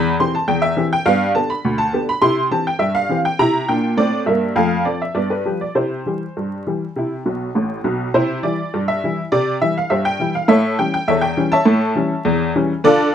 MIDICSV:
0, 0, Header, 1, 2, 480
1, 0, Start_track
1, 0, Key_signature, 0, "major"
1, 0, Tempo, 588813
1, 862, Time_signature, 2, 2, 24, 8
1, 10717, End_track
2, 0, Start_track
2, 0, Title_t, "Honky-tonk piano"
2, 0, Program_c, 0, 3
2, 0, Note_on_c, 0, 40, 105
2, 0, Note_on_c, 0, 83, 127
2, 104, Note_off_c, 0, 83, 0
2, 113, Note_off_c, 0, 40, 0
2, 162, Note_on_c, 0, 52, 50
2, 163, Note_on_c, 0, 84, 98
2, 164, Note_on_c, 0, 60, 62
2, 165, Note_on_c, 0, 67, 56
2, 274, Note_off_c, 0, 84, 0
2, 283, Note_on_c, 0, 81, 93
2, 289, Note_off_c, 0, 52, 0
2, 291, Note_off_c, 0, 60, 0
2, 291, Note_off_c, 0, 67, 0
2, 389, Note_on_c, 0, 79, 92
2, 390, Note_on_c, 0, 40, 72
2, 394, Note_off_c, 0, 81, 0
2, 503, Note_on_c, 0, 76, 102
2, 506, Note_off_c, 0, 79, 0
2, 591, Note_off_c, 0, 40, 0
2, 625, Note_on_c, 0, 52, 65
2, 627, Note_on_c, 0, 60, 52
2, 633, Note_on_c, 0, 67, 63
2, 694, Note_off_c, 0, 76, 0
2, 755, Note_on_c, 0, 79, 100
2, 756, Note_off_c, 0, 52, 0
2, 758, Note_off_c, 0, 60, 0
2, 762, Note_off_c, 0, 67, 0
2, 862, Note_on_c, 0, 43, 107
2, 863, Note_on_c, 0, 77, 119
2, 868, Note_off_c, 0, 79, 0
2, 880, Note_on_c, 0, 59, 77
2, 1006, Note_off_c, 0, 59, 0
2, 1053, Note_off_c, 0, 77, 0
2, 1065, Note_off_c, 0, 43, 0
2, 1099, Note_on_c, 0, 81, 96
2, 1102, Note_on_c, 0, 50, 51
2, 1102, Note_on_c, 0, 59, 54
2, 1106, Note_on_c, 0, 67, 53
2, 1219, Note_off_c, 0, 81, 0
2, 1222, Note_on_c, 0, 83, 86
2, 1232, Note_off_c, 0, 50, 0
2, 1232, Note_off_c, 0, 59, 0
2, 1236, Note_off_c, 0, 67, 0
2, 1342, Note_on_c, 0, 38, 83
2, 1447, Note_off_c, 0, 83, 0
2, 1452, Note_on_c, 0, 81, 108
2, 1543, Note_off_c, 0, 38, 0
2, 1573, Note_on_c, 0, 50, 58
2, 1579, Note_on_c, 0, 67, 62
2, 1581, Note_on_c, 0, 59, 54
2, 1645, Note_off_c, 0, 81, 0
2, 1704, Note_on_c, 0, 83, 104
2, 1705, Note_off_c, 0, 50, 0
2, 1710, Note_off_c, 0, 67, 0
2, 1711, Note_off_c, 0, 59, 0
2, 1806, Note_on_c, 0, 84, 124
2, 1808, Note_on_c, 0, 48, 98
2, 1819, Note_off_c, 0, 83, 0
2, 1824, Note_on_c, 0, 64, 79
2, 1953, Note_off_c, 0, 64, 0
2, 2001, Note_off_c, 0, 84, 0
2, 2014, Note_off_c, 0, 48, 0
2, 2047, Note_on_c, 0, 52, 42
2, 2050, Note_on_c, 0, 60, 54
2, 2050, Note_on_c, 0, 81, 95
2, 2053, Note_on_c, 0, 67, 61
2, 2172, Note_off_c, 0, 81, 0
2, 2176, Note_on_c, 0, 79, 85
2, 2181, Note_off_c, 0, 52, 0
2, 2182, Note_off_c, 0, 60, 0
2, 2184, Note_off_c, 0, 67, 0
2, 2274, Note_on_c, 0, 43, 72
2, 2276, Note_on_c, 0, 76, 94
2, 2295, Note_off_c, 0, 79, 0
2, 2402, Note_on_c, 0, 77, 107
2, 2404, Note_off_c, 0, 76, 0
2, 2486, Note_off_c, 0, 43, 0
2, 2522, Note_on_c, 0, 52, 57
2, 2529, Note_on_c, 0, 60, 54
2, 2535, Note_on_c, 0, 67, 59
2, 2598, Note_off_c, 0, 77, 0
2, 2651, Note_on_c, 0, 79, 93
2, 2657, Note_off_c, 0, 52, 0
2, 2662, Note_off_c, 0, 60, 0
2, 2666, Note_off_c, 0, 67, 0
2, 2764, Note_on_c, 0, 48, 93
2, 2766, Note_on_c, 0, 82, 117
2, 2771, Note_off_c, 0, 79, 0
2, 2784, Note_on_c, 0, 64, 91
2, 2959, Note_off_c, 0, 48, 0
2, 2971, Note_off_c, 0, 64, 0
2, 2997, Note_off_c, 0, 82, 0
2, 3004, Note_on_c, 0, 79, 86
2, 3009, Note_on_c, 0, 46, 74
2, 3023, Note_on_c, 0, 62, 72
2, 3202, Note_off_c, 0, 46, 0
2, 3210, Note_off_c, 0, 62, 0
2, 3235, Note_off_c, 0, 79, 0
2, 3239, Note_on_c, 0, 45, 77
2, 3241, Note_on_c, 0, 74, 96
2, 3257, Note_on_c, 0, 60, 72
2, 3436, Note_off_c, 0, 45, 0
2, 3437, Note_off_c, 0, 74, 0
2, 3446, Note_off_c, 0, 60, 0
2, 3474, Note_on_c, 0, 43, 76
2, 3477, Note_on_c, 0, 76, 70
2, 3491, Note_on_c, 0, 58, 82
2, 3673, Note_off_c, 0, 43, 0
2, 3683, Note_off_c, 0, 58, 0
2, 3712, Note_off_c, 0, 76, 0
2, 3713, Note_on_c, 0, 41, 98
2, 3718, Note_on_c, 0, 77, 104
2, 3732, Note_on_c, 0, 57, 58
2, 3864, Note_off_c, 0, 57, 0
2, 3926, Note_off_c, 0, 41, 0
2, 3953, Note_off_c, 0, 77, 0
2, 3956, Note_on_c, 0, 74, 79
2, 3960, Note_on_c, 0, 60, 44
2, 3961, Note_on_c, 0, 53, 35
2, 3966, Note_on_c, 0, 69, 47
2, 4084, Note_off_c, 0, 74, 0
2, 4089, Note_on_c, 0, 76, 67
2, 4096, Note_off_c, 0, 60, 0
2, 4097, Note_off_c, 0, 53, 0
2, 4100, Note_off_c, 0, 69, 0
2, 4196, Note_on_c, 0, 43, 74
2, 4197, Note_on_c, 0, 74, 72
2, 4212, Note_off_c, 0, 76, 0
2, 4212, Note_on_c, 0, 59, 51
2, 4323, Note_on_c, 0, 71, 73
2, 4327, Note_off_c, 0, 74, 0
2, 4346, Note_off_c, 0, 59, 0
2, 4409, Note_off_c, 0, 43, 0
2, 4446, Note_on_c, 0, 53, 43
2, 4446, Note_on_c, 0, 55, 41
2, 4452, Note_on_c, 0, 67, 52
2, 4559, Note_off_c, 0, 71, 0
2, 4574, Note_on_c, 0, 74, 67
2, 4582, Note_off_c, 0, 53, 0
2, 4583, Note_off_c, 0, 55, 0
2, 4587, Note_off_c, 0, 67, 0
2, 4687, Note_on_c, 0, 48, 81
2, 4691, Note_on_c, 0, 72, 72
2, 4698, Note_off_c, 0, 74, 0
2, 4705, Note_on_c, 0, 64, 48
2, 4837, Note_off_c, 0, 64, 0
2, 4899, Note_off_c, 0, 48, 0
2, 4940, Note_on_c, 0, 52, 36
2, 4946, Note_on_c, 0, 55, 43
2, 4951, Note_on_c, 0, 67, 42
2, 5075, Note_off_c, 0, 52, 0
2, 5079, Note_off_c, 0, 55, 0
2, 5083, Note_off_c, 0, 67, 0
2, 5192, Note_on_c, 0, 43, 51
2, 5396, Note_off_c, 0, 43, 0
2, 5436, Note_on_c, 0, 52, 46
2, 5437, Note_on_c, 0, 55, 42
2, 5441, Note_on_c, 0, 67, 44
2, 5567, Note_off_c, 0, 52, 0
2, 5568, Note_off_c, 0, 55, 0
2, 5571, Note_off_c, 0, 67, 0
2, 5675, Note_on_c, 0, 48, 74
2, 5694, Note_on_c, 0, 64, 55
2, 5821, Note_off_c, 0, 64, 0
2, 5879, Note_off_c, 0, 48, 0
2, 5916, Note_on_c, 0, 47, 57
2, 5917, Note_on_c, 0, 35, 55
2, 6096, Note_off_c, 0, 47, 0
2, 6097, Note_off_c, 0, 35, 0
2, 6119, Note_off_c, 0, 72, 0
2, 6155, Note_on_c, 0, 45, 56
2, 6159, Note_on_c, 0, 33, 63
2, 6337, Note_off_c, 0, 45, 0
2, 6339, Note_off_c, 0, 33, 0
2, 6393, Note_on_c, 0, 35, 67
2, 6395, Note_on_c, 0, 47, 66
2, 6576, Note_off_c, 0, 35, 0
2, 6578, Note_off_c, 0, 47, 0
2, 6636, Note_on_c, 0, 48, 96
2, 6637, Note_on_c, 0, 72, 98
2, 6644, Note_on_c, 0, 64, 80
2, 6644, Note_on_c, 0, 67, 80
2, 6831, Note_off_c, 0, 72, 0
2, 6842, Note_off_c, 0, 48, 0
2, 6866, Note_off_c, 0, 64, 0
2, 6866, Note_off_c, 0, 67, 0
2, 6874, Note_on_c, 0, 52, 50
2, 6874, Note_on_c, 0, 74, 77
2, 6878, Note_on_c, 0, 55, 46
2, 6883, Note_on_c, 0, 64, 56
2, 7008, Note_off_c, 0, 52, 0
2, 7011, Note_off_c, 0, 55, 0
2, 7015, Note_off_c, 0, 64, 0
2, 7124, Note_on_c, 0, 43, 73
2, 7165, Note_off_c, 0, 74, 0
2, 7239, Note_on_c, 0, 76, 92
2, 7327, Note_off_c, 0, 43, 0
2, 7369, Note_on_c, 0, 52, 47
2, 7369, Note_on_c, 0, 55, 48
2, 7374, Note_on_c, 0, 64, 55
2, 7498, Note_off_c, 0, 52, 0
2, 7498, Note_off_c, 0, 55, 0
2, 7502, Note_off_c, 0, 64, 0
2, 7528, Note_off_c, 0, 76, 0
2, 7597, Note_on_c, 0, 74, 102
2, 7598, Note_on_c, 0, 48, 101
2, 7790, Note_off_c, 0, 74, 0
2, 7803, Note_off_c, 0, 48, 0
2, 7838, Note_on_c, 0, 52, 55
2, 7838, Note_on_c, 0, 76, 94
2, 7842, Note_on_c, 0, 55, 50
2, 7847, Note_on_c, 0, 64, 46
2, 7959, Note_off_c, 0, 76, 0
2, 7968, Note_on_c, 0, 77, 86
2, 7971, Note_off_c, 0, 52, 0
2, 7973, Note_off_c, 0, 55, 0
2, 7977, Note_off_c, 0, 64, 0
2, 8069, Note_on_c, 0, 76, 85
2, 8073, Note_on_c, 0, 43, 71
2, 8079, Note_on_c, 0, 67, 61
2, 8080, Note_on_c, 0, 72, 61
2, 8084, Note_off_c, 0, 77, 0
2, 8191, Note_off_c, 0, 67, 0
2, 8192, Note_off_c, 0, 72, 0
2, 8194, Note_on_c, 0, 79, 97
2, 8195, Note_off_c, 0, 76, 0
2, 8280, Note_off_c, 0, 43, 0
2, 8312, Note_on_c, 0, 52, 52
2, 8319, Note_on_c, 0, 55, 57
2, 8320, Note_on_c, 0, 64, 62
2, 8425, Note_off_c, 0, 79, 0
2, 8438, Note_on_c, 0, 77, 87
2, 8446, Note_off_c, 0, 52, 0
2, 8451, Note_off_c, 0, 55, 0
2, 8452, Note_off_c, 0, 64, 0
2, 8545, Note_on_c, 0, 45, 107
2, 8548, Note_on_c, 0, 76, 109
2, 8556, Note_on_c, 0, 69, 85
2, 8558, Note_on_c, 0, 73, 81
2, 8559, Note_off_c, 0, 77, 0
2, 8755, Note_off_c, 0, 45, 0
2, 8781, Note_off_c, 0, 69, 0
2, 8781, Note_off_c, 0, 76, 0
2, 8782, Note_off_c, 0, 73, 0
2, 8795, Note_on_c, 0, 79, 91
2, 8796, Note_on_c, 0, 52, 47
2, 8798, Note_on_c, 0, 55, 57
2, 8801, Note_on_c, 0, 61, 47
2, 8905, Note_off_c, 0, 79, 0
2, 8917, Note_on_c, 0, 79, 97
2, 8928, Note_off_c, 0, 52, 0
2, 8930, Note_off_c, 0, 55, 0
2, 8932, Note_off_c, 0, 61, 0
2, 9030, Note_on_c, 0, 40, 77
2, 9032, Note_on_c, 0, 76, 101
2, 9038, Note_off_c, 0, 79, 0
2, 9041, Note_on_c, 0, 69, 73
2, 9042, Note_on_c, 0, 73, 74
2, 9142, Note_on_c, 0, 79, 99
2, 9151, Note_off_c, 0, 69, 0
2, 9152, Note_off_c, 0, 73, 0
2, 9154, Note_off_c, 0, 76, 0
2, 9237, Note_off_c, 0, 40, 0
2, 9270, Note_on_c, 0, 52, 61
2, 9271, Note_on_c, 0, 55, 57
2, 9274, Note_on_c, 0, 61, 65
2, 9376, Note_off_c, 0, 79, 0
2, 9388, Note_on_c, 0, 81, 117
2, 9397, Note_on_c, 0, 73, 84
2, 9398, Note_on_c, 0, 76, 94
2, 9403, Note_off_c, 0, 52, 0
2, 9404, Note_off_c, 0, 55, 0
2, 9406, Note_off_c, 0, 61, 0
2, 9501, Note_on_c, 0, 45, 108
2, 9710, Note_off_c, 0, 45, 0
2, 9745, Note_on_c, 0, 52, 56
2, 9752, Note_on_c, 0, 55, 62
2, 9754, Note_on_c, 0, 61, 62
2, 9879, Note_off_c, 0, 52, 0
2, 9884, Note_off_c, 0, 55, 0
2, 9885, Note_off_c, 0, 61, 0
2, 9986, Note_on_c, 0, 40, 97
2, 10192, Note_off_c, 0, 40, 0
2, 10235, Note_on_c, 0, 52, 68
2, 10236, Note_on_c, 0, 55, 65
2, 10239, Note_on_c, 0, 61, 72
2, 10251, Note_off_c, 0, 81, 0
2, 10365, Note_off_c, 0, 52, 0
2, 10366, Note_off_c, 0, 55, 0
2, 10368, Note_off_c, 0, 61, 0
2, 10438, Note_off_c, 0, 73, 0
2, 10439, Note_off_c, 0, 76, 0
2, 10468, Note_on_c, 0, 50, 112
2, 10472, Note_on_c, 0, 74, 127
2, 10481, Note_on_c, 0, 65, 99
2, 10482, Note_on_c, 0, 69, 102
2, 10659, Note_off_c, 0, 50, 0
2, 10697, Note_off_c, 0, 65, 0
2, 10697, Note_off_c, 0, 74, 0
2, 10698, Note_off_c, 0, 69, 0
2, 10717, End_track
0, 0, End_of_file